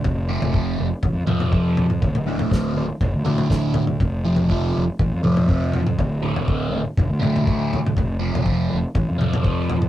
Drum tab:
SD |----------------|----o-------o---|----------------|----------------|
T2 |----------o----o|--------------oo|----------o----o|----------o----o|
FT |o--o----o--o--o-|oo-o----o-oo--o-|o--o----o--o--o-|o--o----o--o--o-|
BD |o---o---o---o---|o---o---o---o---|o---o---o---o---|o---o---o---o---|

SD |----------------|
T2 |----------o----o|
FT |o--o----o--o--o-|
BD |o---o---o---o---|